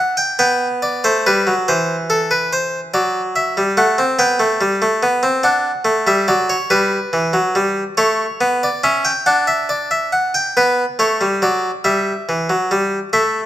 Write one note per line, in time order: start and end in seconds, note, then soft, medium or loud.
0.00 0.36 D4 medium
0.00 0.17 F#5 medium
0.17 0.38 G5 medium
0.39 1.02 B3 medium
0.39 0.66 G5 medium
0.82 1.04 D5 medium
1.04 1.25 A3 medium
1.04 1.25 C5 medium
1.26 1.47 G3 medium
1.26 1.53 B4 medium
1.47 1.67 F#3 medium
1.68 2.91 E3 medium
1.68 1.94 C5 medium
2.10 2.30 A4 medium
2.31 2.51 B4 medium
2.53 2.79 C5 medium
2.94 3.55 F#3 medium
2.94 3.20 D5 medium
3.36 3.61 E5 medium
3.57 3.77 G3 medium
3.77 3.97 A3 medium
3.77 4.03 F#5 medium
3.98 4.18 C4 medium
4.19 4.39 B3 medium
4.19 5.40 G5 medium
4.40 4.60 A3 medium
4.61 4.81 G3 medium
4.82 5.02 A3 medium
5.03 5.23 B3 medium
5.23 5.43 C4 medium
5.43 5.70 D4 medium
5.43 6.05 F#5 medium
5.85 6.06 A3 medium
6.07 6.28 G3 medium
6.07 6.28 E5 medium
6.28 6.54 F#3 medium
6.28 6.49 D5 medium
6.50 6.70 C#5 medium
6.70 6.97 G3 medium
6.70 7.94 B4 medium
7.13 7.34 E3 medium
7.33 7.54 F#3 medium
7.55 7.82 G3 medium
7.97 8.24 A3 medium
7.97 8.60 C#5 medium
8.41 8.67 B3 medium
8.63 8.83 D5 medium
8.84 9.10 C#4 medium
8.84 9.04 E5 medium
9.05 9.25 G5 medium
9.26 10.52 D4 medium
9.26 9.47 F#5 medium
9.47 9.68 E5 medium
9.69 9.90 D5 medium
9.91 10.12 E5 medium
10.12 10.34 F#5 medium
10.34 10.55 G5 medium
10.57 10.83 B3 medium
10.57 10.84 B4 medium
10.99 11.20 A3 medium
10.99 11.26 C#5 medium
11.21 11.42 G3 medium
11.42 11.69 F#3 medium
11.42 11.69 D5 medium
11.84 12.12 G3 medium
11.84 13.09 E5 medium
12.29 12.49 E3 medium
12.50 12.70 F#3 medium
12.71 12.97 G3 medium
13.13 13.46 A3 medium
13.13 13.39 E5 medium